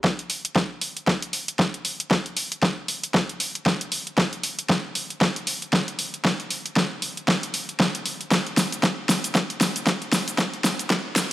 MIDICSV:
0, 0, Header, 1, 2, 480
1, 0, Start_track
1, 0, Tempo, 517241
1, 36, Time_signature, 4, 2, 24, 8
1, 10512, End_track
2, 0, Start_track
2, 0, Title_t, "Drums"
2, 36, Note_on_c, 9, 36, 109
2, 36, Note_on_c, 9, 38, 45
2, 129, Note_off_c, 9, 36, 0
2, 129, Note_off_c, 9, 38, 0
2, 177, Note_on_c, 9, 42, 34
2, 269, Note_off_c, 9, 42, 0
2, 276, Note_on_c, 9, 46, 97
2, 369, Note_off_c, 9, 46, 0
2, 416, Note_on_c, 9, 42, 67
2, 509, Note_off_c, 9, 42, 0
2, 516, Note_on_c, 9, 36, 104
2, 516, Note_on_c, 9, 38, 46
2, 608, Note_off_c, 9, 36, 0
2, 609, Note_off_c, 9, 38, 0
2, 756, Note_on_c, 9, 46, 100
2, 849, Note_off_c, 9, 46, 0
2, 897, Note_on_c, 9, 42, 65
2, 990, Note_off_c, 9, 42, 0
2, 996, Note_on_c, 9, 36, 116
2, 996, Note_on_c, 9, 38, 49
2, 1089, Note_off_c, 9, 36, 0
2, 1089, Note_off_c, 9, 38, 0
2, 1136, Note_on_c, 9, 42, 54
2, 1229, Note_off_c, 9, 42, 0
2, 1235, Note_on_c, 9, 46, 101
2, 1328, Note_off_c, 9, 46, 0
2, 1376, Note_on_c, 9, 42, 65
2, 1469, Note_off_c, 9, 42, 0
2, 1476, Note_on_c, 9, 36, 97
2, 1476, Note_on_c, 9, 38, 49
2, 1569, Note_off_c, 9, 36, 0
2, 1569, Note_off_c, 9, 38, 0
2, 1616, Note_on_c, 9, 42, 52
2, 1709, Note_off_c, 9, 42, 0
2, 1715, Note_on_c, 9, 46, 101
2, 1808, Note_off_c, 9, 46, 0
2, 1856, Note_on_c, 9, 42, 66
2, 1949, Note_off_c, 9, 42, 0
2, 1956, Note_on_c, 9, 36, 113
2, 1956, Note_on_c, 9, 38, 51
2, 2048, Note_off_c, 9, 38, 0
2, 2049, Note_off_c, 9, 36, 0
2, 2096, Note_on_c, 9, 42, 36
2, 2189, Note_off_c, 9, 42, 0
2, 2195, Note_on_c, 9, 46, 107
2, 2288, Note_off_c, 9, 46, 0
2, 2336, Note_on_c, 9, 42, 64
2, 2429, Note_off_c, 9, 42, 0
2, 2436, Note_on_c, 9, 36, 106
2, 2436, Note_on_c, 9, 38, 51
2, 2529, Note_off_c, 9, 36, 0
2, 2529, Note_off_c, 9, 38, 0
2, 2676, Note_on_c, 9, 46, 104
2, 2769, Note_off_c, 9, 46, 0
2, 2817, Note_on_c, 9, 42, 62
2, 2909, Note_off_c, 9, 42, 0
2, 2916, Note_on_c, 9, 36, 116
2, 2916, Note_on_c, 9, 38, 54
2, 3008, Note_off_c, 9, 36, 0
2, 3008, Note_off_c, 9, 38, 0
2, 3057, Note_on_c, 9, 42, 53
2, 3150, Note_off_c, 9, 42, 0
2, 3156, Note_on_c, 9, 46, 107
2, 3249, Note_off_c, 9, 46, 0
2, 3297, Note_on_c, 9, 42, 63
2, 3390, Note_off_c, 9, 42, 0
2, 3396, Note_on_c, 9, 36, 102
2, 3396, Note_on_c, 9, 38, 59
2, 3488, Note_off_c, 9, 36, 0
2, 3489, Note_off_c, 9, 38, 0
2, 3536, Note_on_c, 9, 42, 52
2, 3629, Note_off_c, 9, 42, 0
2, 3636, Note_on_c, 9, 46, 106
2, 3729, Note_off_c, 9, 46, 0
2, 3776, Note_on_c, 9, 42, 65
2, 3869, Note_off_c, 9, 42, 0
2, 3876, Note_on_c, 9, 36, 116
2, 3876, Note_on_c, 9, 38, 57
2, 3968, Note_off_c, 9, 36, 0
2, 3968, Note_off_c, 9, 38, 0
2, 4016, Note_on_c, 9, 42, 33
2, 4109, Note_off_c, 9, 42, 0
2, 4115, Note_on_c, 9, 46, 108
2, 4208, Note_off_c, 9, 46, 0
2, 4256, Note_on_c, 9, 42, 62
2, 4349, Note_off_c, 9, 42, 0
2, 4356, Note_on_c, 9, 36, 109
2, 4356, Note_on_c, 9, 38, 59
2, 4448, Note_off_c, 9, 36, 0
2, 4449, Note_off_c, 9, 38, 0
2, 4596, Note_on_c, 9, 46, 108
2, 4689, Note_off_c, 9, 46, 0
2, 4736, Note_on_c, 9, 42, 62
2, 4829, Note_off_c, 9, 42, 0
2, 4836, Note_on_c, 9, 36, 121
2, 4836, Note_on_c, 9, 38, 61
2, 4928, Note_off_c, 9, 36, 0
2, 4928, Note_off_c, 9, 38, 0
2, 4976, Note_on_c, 9, 42, 50
2, 5069, Note_off_c, 9, 42, 0
2, 5076, Note_on_c, 9, 46, 111
2, 5169, Note_off_c, 9, 46, 0
2, 5217, Note_on_c, 9, 42, 62
2, 5310, Note_off_c, 9, 42, 0
2, 5315, Note_on_c, 9, 36, 104
2, 5316, Note_on_c, 9, 38, 63
2, 5408, Note_off_c, 9, 36, 0
2, 5409, Note_off_c, 9, 38, 0
2, 5456, Note_on_c, 9, 42, 50
2, 5549, Note_off_c, 9, 42, 0
2, 5556, Note_on_c, 9, 46, 106
2, 5649, Note_off_c, 9, 46, 0
2, 5697, Note_on_c, 9, 42, 63
2, 5790, Note_off_c, 9, 42, 0
2, 5796, Note_on_c, 9, 36, 119
2, 5796, Note_on_c, 9, 38, 65
2, 5888, Note_off_c, 9, 36, 0
2, 5889, Note_off_c, 9, 38, 0
2, 5937, Note_on_c, 9, 42, 33
2, 6030, Note_off_c, 9, 42, 0
2, 6036, Note_on_c, 9, 46, 104
2, 6129, Note_off_c, 9, 46, 0
2, 6177, Note_on_c, 9, 42, 61
2, 6270, Note_off_c, 9, 42, 0
2, 6276, Note_on_c, 9, 36, 107
2, 6276, Note_on_c, 9, 38, 66
2, 6368, Note_off_c, 9, 36, 0
2, 6369, Note_off_c, 9, 38, 0
2, 6516, Note_on_c, 9, 46, 105
2, 6609, Note_off_c, 9, 46, 0
2, 6657, Note_on_c, 9, 42, 63
2, 6749, Note_off_c, 9, 42, 0
2, 6755, Note_on_c, 9, 36, 122
2, 6756, Note_on_c, 9, 38, 71
2, 6848, Note_off_c, 9, 36, 0
2, 6849, Note_off_c, 9, 38, 0
2, 6897, Note_on_c, 9, 42, 48
2, 6990, Note_off_c, 9, 42, 0
2, 6996, Note_on_c, 9, 46, 107
2, 7089, Note_off_c, 9, 46, 0
2, 7136, Note_on_c, 9, 42, 63
2, 7229, Note_off_c, 9, 42, 0
2, 7235, Note_on_c, 9, 38, 72
2, 7236, Note_on_c, 9, 36, 103
2, 7328, Note_off_c, 9, 36, 0
2, 7328, Note_off_c, 9, 38, 0
2, 7376, Note_on_c, 9, 42, 49
2, 7469, Note_off_c, 9, 42, 0
2, 7475, Note_on_c, 9, 46, 105
2, 7568, Note_off_c, 9, 46, 0
2, 7616, Note_on_c, 9, 42, 62
2, 7709, Note_off_c, 9, 42, 0
2, 7715, Note_on_c, 9, 36, 114
2, 7715, Note_on_c, 9, 38, 74
2, 7722, Note_on_c, 9, 82, 33
2, 7808, Note_off_c, 9, 36, 0
2, 7808, Note_off_c, 9, 38, 0
2, 7815, Note_off_c, 9, 82, 0
2, 7856, Note_on_c, 9, 42, 34
2, 7949, Note_off_c, 9, 42, 0
2, 7955, Note_on_c, 9, 38, 73
2, 7955, Note_on_c, 9, 46, 105
2, 7962, Note_on_c, 9, 82, 77
2, 8048, Note_off_c, 9, 38, 0
2, 8048, Note_off_c, 9, 46, 0
2, 8055, Note_off_c, 9, 82, 0
2, 8096, Note_on_c, 9, 42, 64
2, 8103, Note_on_c, 9, 82, 43
2, 8189, Note_off_c, 9, 42, 0
2, 8195, Note_on_c, 9, 36, 106
2, 8196, Note_off_c, 9, 82, 0
2, 8196, Note_on_c, 9, 38, 75
2, 8202, Note_on_c, 9, 82, 32
2, 8288, Note_off_c, 9, 36, 0
2, 8288, Note_off_c, 9, 38, 0
2, 8295, Note_off_c, 9, 82, 0
2, 8436, Note_on_c, 9, 38, 76
2, 8436, Note_on_c, 9, 46, 105
2, 8442, Note_on_c, 9, 82, 76
2, 8529, Note_off_c, 9, 38, 0
2, 8529, Note_off_c, 9, 46, 0
2, 8535, Note_off_c, 9, 82, 0
2, 8576, Note_on_c, 9, 42, 62
2, 8583, Note_on_c, 9, 82, 45
2, 8669, Note_off_c, 9, 42, 0
2, 8675, Note_on_c, 9, 36, 119
2, 8676, Note_off_c, 9, 82, 0
2, 8676, Note_on_c, 9, 38, 75
2, 8682, Note_on_c, 9, 82, 34
2, 8768, Note_off_c, 9, 36, 0
2, 8768, Note_off_c, 9, 38, 0
2, 8775, Note_off_c, 9, 82, 0
2, 8817, Note_on_c, 9, 42, 51
2, 8909, Note_off_c, 9, 42, 0
2, 8916, Note_on_c, 9, 38, 79
2, 8916, Note_on_c, 9, 46, 105
2, 8923, Note_on_c, 9, 82, 80
2, 9009, Note_off_c, 9, 38, 0
2, 9009, Note_off_c, 9, 46, 0
2, 9015, Note_off_c, 9, 82, 0
2, 9056, Note_on_c, 9, 42, 60
2, 9063, Note_on_c, 9, 82, 44
2, 9149, Note_off_c, 9, 42, 0
2, 9155, Note_on_c, 9, 36, 100
2, 9156, Note_off_c, 9, 82, 0
2, 9156, Note_on_c, 9, 38, 80
2, 9162, Note_on_c, 9, 82, 34
2, 9248, Note_off_c, 9, 36, 0
2, 9248, Note_off_c, 9, 38, 0
2, 9255, Note_off_c, 9, 82, 0
2, 9296, Note_on_c, 9, 42, 50
2, 9389, Note_off_c, 9, 42, 0
2, 9396, Note_on_c, 9, 38, 79
2, 9396, Note_on_c, 9, 46, 102
2, 9402, Note_on_c, 9, 82, 79
2, 9488, Note_off_c, 9, 38, 0
2, 9488, Note_off_c, 9, 46, 0
2, 9495, Note_off_c, 9, 82, 0
2, 9537, Note_on_c, 9, 42, 63
2, 9543, Note_on_c, 9, 82, 45
2, 9629, Note_off_c, 9, 42, 0
2, 9635, Note_on_c, 9, 36, 112
2, 9635, Note_on_c, 9, 38, 83
2, 9636, Note_off_c, 9, 82, 0
2, 9642, Note_on_c, 9, 82, 35
2, 9728, Note_off_c, 9, 36, 0
2, 9728, Note_off_c, 9, 38, 0
2, 9735, Note_off_c, 9, 82, 0
2, 9776, Note_on_c, 9, 42, 35
2, 9869, Note_off_c, 9, 42, 0
2, 9876, Note_on_c, 9, 38, 81
2, 9876, Note_on_c, 9, 46, 97
2, 9883, Note_on_c, 9, 82, 80
2, 9969, Note_off_c, 9, 38, 0
2, 9969, Note_off_c, 9, 46, 0
2, 9975, Note_off_c, 9, 82, 0
2, 10017, Note_on_c, 9, 42, 66
2, 10023, Note_on_c, 9, 82, 46
2, 10109, Note_off_c, 9, 42, 0
2, 10115, Note_on_c, 9, 36, 98
2, 10116, Note_off_c, 9, 82, 0
2, 10116, Note_on_c, 9, 38, 85
2, 10123, Note_on_c, 9, 82, 34
2, 10208, Note_off_c, 9, 36, 0
2, 10209, Note_off_c, 9, 38, 0
2, 10215, Note_off_c, 9, 82, 0
2, 10356, Note_on_c, 9, 38, 86
2, 10356, Note_on_c, 9, 46, 101
2, 10362, Note_on_c, 9, 82, 81
2, 10448, Note_off_c, 9, 38, 0
2, 10448, Note_off_c, 9, 46, 0
2, 10455, Note_off_c, 9, 82, 0
2, 10512, End_track
0, 0, End_of_file